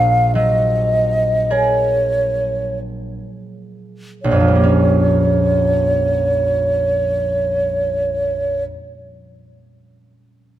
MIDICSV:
0, 0, Header, 1, 3, 480
1, 0, Start_track
1, 0, Tempo, 1149425
1, 624, Tempo, 1279318
1, 1104, Tempo, 1452785
1, 1584, Tempo, 1376147
1, 1585, Time_signature, 4, 2, 24, 8
1, 3804, End_track
2, 0, Start_track
2, 0, Title_t, "Flute"
2, 0, Program_c, 0, 73
2, 0, Note_on_c, 0, 77, 51
2, 144, Note_off_c, 0, 77, 0
2, 147, Note_on_c, 0, 75, 50
2, 634, Note_on_c, 0, 73, 42
2, 639, Note_off_c, 0, 75, 0
2, 1109, Note_off_c, 0, 73, 0
2, 1584, Note_on_c, 0, 73, 31
2, 3122, Note_off_c, 0, 73, 0
2, 3804, End_track
3, 0, Start_track
3, 0, Title_t, "Harp"
3, 0, Program_c, 1, 46
3, 0, Note_on_c, 1, 34, 34
3, 0, Note_on_c, 1, 70, 31
3, 147, Note_on_c, 1, 54, 27
3, 469, Note_off_c, 1, 70, 0
3, 627, Note_on_c, 1, 70, 26
3, 629, Note_on_c, 1, 68, 26
3, 1230, Note_off_c, 1, 34, 0
3, 1590, Note_on_c, 1, 34, 27
3, 1593, Note_off_c, 1, 54, 0
3, 1606, Note_off_c, 1, 68, 0
3, 1615, Note_on_c, 1, 41, 20
3, 1645, Note_on_c, 1, 53, 21
3, 1672, Note_on_c, 1, 55, 20
3, 1698, Note_on_c, 1, 58, 22
3, 1727, Note_on_c, 1, 61, 22
3, 1994, Note_off_c, 1, 70, 0
3, 3128, Note_off_c, 1, 34, 0
3, 3153, Note_off_c, 1, 41, 0
3, 3183, Note_off_c, 1, 53, 0
3, 3210, Note_off_c, 1, 55, 0
3, 3236, Note_off_c, 1, 58, 0
3, 3265, Note_off_c, 1, 61, 0
3, 3804, End_track
0, 0, End_of_file